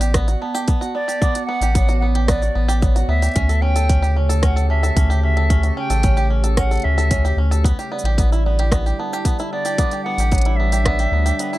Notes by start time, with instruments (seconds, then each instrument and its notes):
Already playing: analog synth bass A1, ambient pad B3, celesta D5
0.01 five-string banjo G4, closed hi-hat, shaker
0.14 five-string banjo B3, kick, cross-stick, closed hi-hat, shaker
0.28 five-string banjo F#4, closed hi-hat, shaker
0.41 five-string banjo B3, celesta A5
0.55 five-string banjo G4, shaker
0.68 five-string banjo B3, kick, closed hi-hat, shaker
0.81 five-string banjo F#4, shaker
0.95 five-string banjo B3, flute D5
1.08 five-string banjo G4, closed hi-hat, shaker
1.22 five-string banjo B3, celesta D6, kick, shaker
1.35 five-string banjo F#4, closed hi-hat, shaker
1.46 five-string banjo B3, flute F#5
1.61 analog synth bass A1, five-string banjo G4, closed hi-hat, shaker
1.75 five-string banjo B3, celesta C#5, kick, closed hi-hat, shaker
1.89 five-string banjo F#4, shaker
2.00 five-string banjo B3, flute F#5
2.15 five-string banjo G4, closed hi-hat
2.26 five-string banjo B3, flute D5, celesta D5, kick, cross-stick, closed hi-hat, shaker
2.42 five-string banjo F#4, shaker
2.55 analog synth bass A1, five-string banjo B3
2.68 five-string banjo G4, shaker
2.82 five-string banjo B3, celesta C#5, kick, shaker
2.96 five-string banjo F#4, closed hi-hat, shaker
3.08 analog synth bass D2, five-string banjo B3, flute E5
3.22 five-string banjo G4, closed hi-hat, shaker
3.24 closed hi-hat
3.27 closed hi-hat
3.28 closed hi-hat
3.31 closed hi-hat
3.34 ambient pad C#3 G4, five-string banjo C#4, closed hi-hat
3.36 analog synth bass D2, ambient pad A3, kick, closed hi-hat, shaker
3.49 five-string banjo A4, closed hi-hat, shaker
3.62 five-string banjo C#4, celesta C#5, flute G5
3.76 five-string banjo A4, closed hi-hat, shaker
3.89 five-string banjo C#4, kick, closed hi-hat, shaker
4.02 five-string banjo G4, shaker
4.16 five-string banjo C#4, celesta C#5
4.29 five-string banjo A4, closed hi-hat, shaker
4.42 five-string banjo C#4, flute F#5, kick, cross-stick, closed hi-hat, shaker
4.56 five-string banjo A4, closed hi-hat, shaker
4.70 five-string banjo C#4, flute E5, celesta A5
4.83 five-string banjo A4, shaker
4.96 analog synth bass D2, five-string banjo C#4, kick, closed hi-hat, shaker
5.10 five-string banjo G4, shaker
5.23 five-string banjo C#4, flute E5
5.37 five-string banjo A4, closed hi-hat
5.50 five-string banjo C#4, celesta C#6, kick, closed hi-hat, shaker
5.63 five-string banjo A4, closed hi-hat, shaker
5.77 five-string banjo C#4, flute G5
5.90 analog synth bass A1, five-string banjo A4, closed hi-hat, shaker
6.03 five-string banjo C#4, celesta C#5, kick, closed hi-hat, shaker
6.17 five-string banjo G4, shaker
6.30 five-string banjo C#4
6.44 five-string banjo A4, closed hi-hat, shaker
6.57 five-string banjo C#4, celesta C#5, flute F#5, kick, cross-stick, closed hi-hat, shaker
6.71 five-string banjo A4, closed hi-hat, shaker
6.73 closed hi-hat
6.75 closed hi-hat
6.77 closed hi-hat
6.80 closed hi-hat
6.82 analog synth bass D2, five-string banjo C#4, flute E5, closed hi-hat
6.98 five-string banjo A4, shaker
7.11 five-string banjo C#4, celesta C#5, kick, closed hi-hat, shaker
7.25 five-string banjo G4, shaker
7.37 analog synth bass D2, five-string banjo C#4
7.51 five-string banjo A4, closed hi-hat, shaker
7.64 ambient pad D3 G3 E4, five-string banjo B3, kick, closed hi-hat, shaker
7.79 five-string banjo G4, closed hi-hat, shaker
7.92 five-string banjo B3, celesta D5
7.99 shaker
8.04 analog synth bass A1, five-string banjo G4, closed hi-hat
8.18 five-string banjo B3, kick, closed hi-hat, shaker
8.32 five-string banjo E4, shaker
8.46 five-string banjo B3, celesta D5
8.59 five-string banjo G4, closed hi-hat
8.72 five-string banjo B3, kick, cross-stick, closed hi-hat, shaker
8.86 five-string banjo G4, shaker
8.99 five-string banjo B3, celesta A5
9.13 five-string banjo G4, shaker
9.25 five-string banjo B3, kick, closed hi-hat, shaker
9.39 five-string banjo E4, shaker
9.51 five-string banjo B3, flute D5
9.65 five-string banjo G4, closed hi-hat, shaker
9.78 five-string banjo B3, ambient pad D4, celesta D6, kick, closed hi-hat, shaker
9.91 five-string banjo G4, closed hi-hat, shaker
10.04 five-string banjo B3, flute F#5
10.18 analog synth bass A1, five-string banjo G4, closed hi-hat, shaker
10.31 five-string banjo B3, celesta C#5, kick, closed hi-hat, shaker
10.35 closed hi-hat
10.38 closed hi-hat
10.41 closed hi-hat
10.45 five-string banjo E4, closed hi-hat
10.56 five-string banjo B3, flute E5
10.72 five-string banjo G4, closed hi-hat, shaker
10.85 five-string banjo B3, celesta D5, kick, cross-stick, closed hi-hat
10.99 five-string banjo G4, closed hi-hat, shaker
11.12 analog synth bass D2, five-string banjo B3
11.26 five-string banjo G4, closed hi-hat, shaker
11.38 five-string banjo B3, celesta G5, closed hi-hat, shaker
11.53 five-string banjo E4, shaker